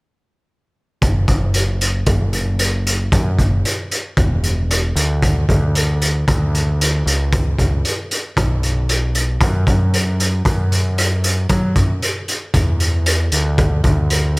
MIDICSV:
0, 0, Header, 1, 3, 480
1, 0, Start_track
1, 0, Tempo, 525855
1, 929, Time_signature, 4, 2, 24, 8
1, 6207, Tempo, 521739
1, 13194, End_track
2, 0, Start_track
2, 0, Title_t, "Picked electric bass"
2, 0, Program_c, 0, 34
2, 934, Note_on_c, 0, 30, 78
2, 1153, Note_off_c, 0, 30, 0
2, 1169, Note_on_c, 0, 30, 62
2, 1855, Note_off_c, 0, 30, 0
2, 1891, Note_on_c, 0, 30, 81
2, 2816, Note_off_c, 0, 30, 0
2, 2848, Note_on_c, 0, 42, 74
2, 3071, Note_off_c, 0, 42, 0
2, 3094, Note_on_c, 0, 30, 65
2, 3314, Note_off_c, 0, 30, 0
2, 3810, Note_on_c, 0, 28, 77
2, 4494, Note_off_c, 0, 28, 0
2, 4524, Note_on_c, 0, 38, 70
2, 4970, Note_off_c, 0, 38, 0
2, 5013, Note_on_c, 0, 38, 64
2, 5693, Note_off_c, 0, 38, 0
2, 5730, Note_on_c, 0, 38, 83
2, 6411, Note_off_c, 0, 38, 0
2, 6445, Note_on_c, 0, 37, 75
2, 6890, Note_off_c, 0, 37, 0
2, 6930, Note_on_c, 0, 37, 73
2, 7151, Note_off_c, 0, 37, 0
2, 7650, Note_on_c, 0, 35, 83
2, 8574, Note_off_c, 0, 35, 0
2, 8605, Note_on_c, 0, 42, 77
2, 8828, Note_off_c, 0, 42, 0
2, 8848, Note_on_c, 0, 42, 64
2, 9532, Note_off_c, 0, 42, 0
2, 9566, Note_on_c, 0, 42, 86
2, 10490, Note_off_c, 0, 42, 0
2, 10527, Note_on_c, 0, 54, 74
2, 10748, Note_off_c, 0, 54, 0
2, 10766, Note_on_c, 0, 42, 62
2, 10987, Note_off_c, 0, 42, 0
2, 11491, Note_on_c, 0, 40, 84
2, 12171, Note_off_c, 0, 40, 0
2, 12206, Note_on_c, 0, 38, 73
2, 12648, Note_off_c, 0, 38, 0
2, 12681, Note_on_c, 0, 38, 65
2, 13194, Note_off_c, 0, 38, 0
2, 13194, End_track
3, 0, Start_track
3, 0, Title_t, "Drums"
3, 930, Note_on_c, 9, 42, 66
3, 931, Note_on_c, 9, 36, 86
3, 1022, Note_off_c, 9, 36, 0
3, 1022, Note_off_c, 9, 42, 0
3, 1166, Note_on_c, 9, 42, 51
3, 1169, Note_on_c, 9, 36, 63
3, 1257, Note_off_c, 9, 42, 0
3, 1260, Note_off_c, 9, 36, 0
3, 1404, Note_on_c, 9, 42, 63
3, 1495, Note_off_c, 9, 42, 0
3, 1651, Note_on_c, 9, 42, 49
3, 1742, Note_off_c, 9, 42, 0
3, 1882, Note_on_c, 9, 42, 60
3, 1887, Note_on_c, 9, 36, 84
3, 1974, Note_off_c, 9, 42, 0
3, 1979, Note_off_c, 9, 36, 0
3, 2125, Note_on_c, 9, 42, 47
3, 2216, Note_off_c, 9, 42, 0
3, 2363, Note_on_c, 9, 42, 64
3, 2454, Note_off_c, 9, 42, 0
3, 2615, Note_on_c, 9, 42, 55
3, 2706, Note_off_c, 9, 42, 0
3, 2849, Note_on_c, 9, 36, 78
3, 2849, Note_on_c, 9, 42, 63
3, 2940, Note_off_c, 9, 36, 0
3, 2941, Note_off_c, 9, 42, 0
3, 3090, Note_on_c, 9, 36, 64
3, 3091, Note_on_c, 9, 42, 44
3, 3182, Note_off_c, 9, 36, 0
3, 3182, Note_off_c, 9, 42, 0
3, 3332, Note_on_c, 9, 42, 61
3, 3423, Note_off_c, 9, 42, 0
3, 3571, Note_on_c, 9, 42, 42
3, 3662, Note_off_c, 9, 42, 0
3, 3807, Note_on_c, 9, 36, 91
3, 3808, Note_on_c, 9, 42, 57
3, 3899, Note_off_c, 9, 36, 0
3, 3899, Note_off_c, 9, 42, 0
3, 4048, Note_on_c, 9, 42, 46
3, 4139, Note_off_c, 9, 42, 0
3, 4294, Note_on_c, 9, 42, 62
3, 4385, Note_off_c, 9, 42, 0
3, 4529, Note_on_c, 9, 42, 55
3, 4620, Note_off_c, 9, 42, 0
3, 4770, Note_on_c, 9, 36, 84
3, 4771, Note_on_c, 9, 42, 68
3, 4861, Note_off_c, 9, 36, 0
3, 4863, Note_off_c, 9, 42, 0
3, 5010, Note_on_c, 9, 36, 69
3, 5014, Note_on_c, 9, 42, 44
3, 5101, Note_off_c, 9, 36, 0
3, 5105, Note_off_c, 9, 42, 0
3, 5250, Note_on_c, 9, 42, 65
3, 5341, Note_off_c, 9, 42, 0
3, 5490, Note_on_c, 9, 42, 47
3, 5581, Note_off_c, 9, 42, 0
3, 5730, Note_on_c, 9, 36, 91
3, 5730, Note_on_c, 9, 42, 70
3, 5821, Note_off_c, 9, 36, 0
3, 5821, Note_off_c, 9, 42, 0
3, 5975, Note_on_c, 9, 42, 50
3, 6066, Note_off_c, 9, 42, 0
3, 6217, Note_on_c, 9, 42, 76
3, 6309, Note_off_c, 9, 42, 0
3, 6457, Note_on_c, 9, 42, 53
3, 6549, Note_off_c, 9, 42, 0
3, 6689, Note_on_c, 9, 42, 72
3, 6690, Note_on_c, 9, 36, 87
3, 6781, Note_off_c, 9, 42, 0
3, 6782, Note_off_c, 9, 36, 0
3, 6929, Note_on_c, 9, 36, 61
3, 6931, Note_on_c, 9, 42, 52
3, 7021, Note_off_c, 9, 36, 0
3, 7023, Note_off_c, 9, 42, 0
3, 7170, Note_on_c, 9, 42, 63
3, 7262, Note_off_c, 9, 42, 0
3, 7412, Note_on_c, 9, 42, 47
3, 7504, Note_off_c, 9, 42, 0
3, 7650, Note_on_c, 9, 36, 85
3, 7651, Note_on_c, 9, 42, 59
3, 7742, Note_off_c, 9, 36, 0
3, 7743, Note_off_c, 9, 42, 0
3, 7891, Note_on_c, 9, 42, 47
3, 7983, Note_off_c, 9, 42, 0
3, 8130, Note_on_c, 9, 42, 58
3, 8222, Note_off_c, 9, 42, 0
3, 8366, Note_on_c, 9, 42, 47
3, 8458, Note_off_c, 9, 42, 0
3, 8605, Note_on_c, 9, 36, 83
3, 8605, Note_on_c, 9, 42, 61
3, 8697, Note_off_c, 9, 36, 0
3, 8697, Note_off_c, 9, 42, 0
3, 8846, Note_on_c, 9, 36, 68
3, 8848, Note_on_c, 9, 42, 47
3, 8938, Note_off_c, 9, 36, 0
3, 8940, Note_off_c, 9, 42, 0
3, 9091, Note_on_c, 9, 42, 61
3, 9183, Note_off_c, 9, 42, 0
3, 9332, Note_on_c, 9, 42, 45
3, 9424, Note_off_c, 9, 42, 0
3, 9567, Note_on_c, 9, 36, 88
3, 9567, Note_on_c, 9, 42, 62
3, 9659, Note_off_c, 9, 36, 0
3, 9659, Note_off_c, 9, 42, 0
3, 9813, Note_on_c, 9, 42, 50
3, 9905, Note_off_c, 9, 42, 0
3, 10052, Note_on_c, 9, 42, 64
3, 10144, Note_off_c, 9, 42, 0
3, 10289, Note_on_c, 9, 42, 57
3, 10381, Note_off_c, 9, 42, 0
3, 10523, Note_on_c, 9, 42, 74
3, 10528, Note_on_c, 9, 36, 89
3, 10615, Note_off_c, 9, 42, 0
3, 10620, Note_off_c, 9, 36, 0
3, 10765, Note_on_c, 9, 42, 53
3, 10768, Note_on_c, 9, 36, 70
3, 10857, Note_off_c, 9, 42, 0
3, 10860, Note_off_c, 9, 36, 0
3, 11011, Note_on_c, 9, 42, 67
3, 11103, Note_off_c, 9, 42, 0
3, 11248, Note_on_c, 9, 42, 47
3, 11340, Note_off_c, 9, 42, 0
3, 11484, Note_on_c, 9, 42, 72
3, 11487, Note_on_c, 9, 36, 78
3, 11576, Note_off_c, 9, 42, 0
3, 11579, Note_off_c, 9, 36, 0
3, 11726, Note_on_c, 9, 42, 51
3, 11818, Note_off_c, 9, 42, 0
3, 11965, Note_on_c, 9, 42, 72
3, 12057, Note_off_c, 9, 42, 0
3, 12202, Note_on_c, 9, 42, 58
3, 12294, Note_off_c, 9, 42, 0
3, 12446, Note_on_c, 9, 36, 82
3, 12446, Note_on_c, 9, 42, 59
3, 12538, Note_off_c, 9, 36, 0
3, 12538, Note_off_c, 9, 42, 0
3, 12681, Note_on_c, 9, 42, 45
3, 12685, Note_on_c, 9, 36, 71
3, 12773, Note_off_c, 9, 42, 0
3, 12777, Note_off_c, 9, 36, 0
3, 12923, Note_on_c, 9, 42, 61
3, 13015, Note_off_c, 9, 42, 0
3, 13194, End_track
0, 0, End_of_file